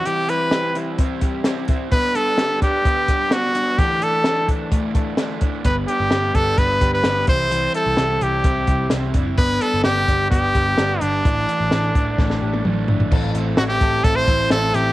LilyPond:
<<
  \new Staff \with { instrumentName = "Trumpet" } { \time 4/4 \key a \dorian \tempo 4 = 129 g'8 b'4 r2 r8 | b'8 a'4 g'4. fis'4 | g'8 a'4 r2 r8 | b'8 g'4 a'8 b'8. b'8. c''8~ |
c''8 a'4 g'4. r4 | b'8 a'8 g'4 g'4. d'8~ | d'2. r4 | r4 fis'16 g'8. a'16 c''8. a'8 g'8 | }
  \new Staff \with { instrumentName = "Clean electric guitar" } { \time 4/4 \key a \dorian e8 e'8 g'8 e'8 c'8 g'8 c'8 e'8 | b8 d'8 g'8 d'8 b4 b8 d'8 | e8 d'8 a'8 d'8 a8 a'8 a8 d'8 | b8 d'8 g'8 d'8 b8 g'8 b8 e8 |
e8 e'8 g'8 e'8 c'8 g'8 c'8 d'16 e'16 | b8 d'8 g'8 d'8 b8 g'8 b8 d'8 | e8 d'8 a'8 d'8 a8 g'16 a'16 a8 d'8 | <e a'>8 c'8 e'8 a'8 c'8 e'8 a'8 c'8 | }
  \new Staff \with { instrumentName = "Overdriven electric guitar" } { \time 4/4 \key a \dorian <c g c' e'>8 <g c' e'>8 <c g c' e'>8 <g c' e'>8 <c g c' e'>8 <g c' e'>8 <c g c' e'>8 <g c' e'>8 | <g, d g b d'>8 <g b d'>8 <d g b d'>8 <g b d'>8 <g, d g b d'>8 <g b d'>8 <d g b d'>8 <g b d'>8 | <a, d e a d'>8 <e a d'>8 <d e a d'>8 <e a d'>8 <a, d e a d'>8 <e a d'>8 <d e a d'>8 <e a d'>8 | <g, d g b d'>8 <g b d'>8 <d g b d'>8 <g b d'>8 <g, d g b d'>8 <g b d'>8 <d g b d'>8 <g c' e'>8 |
<c g c' e'>8 <g c' e'>8 <c g c' e'>8 <g c' e'>8 <c g c' e'>8 <g c' e'>8 <c g c' e'>8 <g c' e'>8 | <g, d g b d'>8 <g b d'>8 <d g b d'>8 <g b d'>8 <g, d g b d'>8 <g b d'>8 <d g b d'>8 <g b d'>8 | <a, d e a d'>8 <e a d'>8 <d e a d'>8 <e a d'>8 <a, d e a d'>8 <e a d'>8 <d e a d'>8 <e a d'>8 | <a, e a c' e'>8 <a c' e'>8 <e a c' e'>8 <a c' e'>8 <a, e a c' e'>8 <a c' e'>8 <e a c' e'>8 <a c' e'>8 | }
  \new Staff \with { instrumentName = "Picked electric bass" } { \clef bass \time 4/4 \key a \dorian r1 | r1 | r1 | g,,8 r16 g,,16 g,,8 g,,8 g,,8 g,,8 g,,8 c,8~ |
c,8 r16 c,16 c,8 c,8 c,8 c,8 c,8 fis,,8 | g,,8 r16 g,,16 g,,8 g,,8 g,,8 g,,8 g,,8 g,,8 | a,,8 r16 a,,16 a,,8 a,,8 a,,8 a,,8 a,,8 g,,8 | a,,8 a,,8 a,,8 a,,8 a,,8 a,,8 a,,8 a,,8 | }
  \new DrumStaff \with { instrumentName = "Drums" } \drummode { \time 4/4 hh8 hh8 <hh sn>8 hh8 <hh bd>8 <hh bd>8 <hh sn>8 <hh bd>8 | <hh bd>8 hh8 <hh sn>8 <hh bd sn>8 <hh bd>8 <hh bd>8 <hh sn>8 hh8 | <hh bd>8 hh8 <hh sn>8 <hh bd>8 <hh bd>8 <hh bd>8 <hh sn>8 <hh bd>8 | <hh bd>8 hh8 <hh sn>8 <hh bd sn>8 <hh bd>8 <hh bd>8 <hh sn>8 <hh bd>8 |
hh8 hh8 <hh sn>8 hh8 <hh bd>8 <hh bd>8 <hh sn>8 <hh bd>8 | <hh bd>8 hh8 <hh sn>8 <hh bd>8 <hh bd>8 <hh bd>8 <hh sn>8 hh8 | <hh bd>8 hh8 <hh sn>8 <hh bd>8 <bd sn>16 sn8 tommh16 toml8 tomfh16 tomfh16 | <cymc bd>8 hh8 <hh sn>8 <hh bd>8 <hh bd>8 <hh bd>8 <hh sn>8 hh8 | }
>>